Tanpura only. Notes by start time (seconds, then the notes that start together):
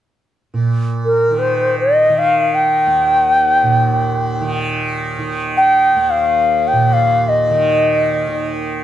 0.54 A#2
1.30 D#3
2.10 D#3
2.87 D#2
3.63 A#2
4.41 D#3
5.19 D#3
5.96 D#2
6.73 A#2
7.51 D#3
8.27 D#3